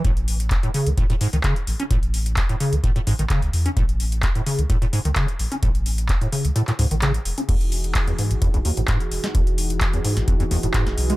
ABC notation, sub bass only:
X:1
M:4/4
L:1/16
Q:1/4=129
K:Alyd
V:1 name="Sub bass" clef=bass
A,,,4 z3 C,, z E,,, z C,, z2 A,,, z | A,,,4 z3 C,, z2 A,,, A,,, z C,, E,, z | A,,,4 z3 C,, z E,,, z C,, z2 A,,, z | A,,,4 z3 C,, z2 C,, A,,,2 z E,,, z |
E,,,4 z3 G,,, z B,,, z G,,, z2 E,,, z | E,,,4 z3 G,,, z2 E,,, E,,, z G,,, B,,, z |]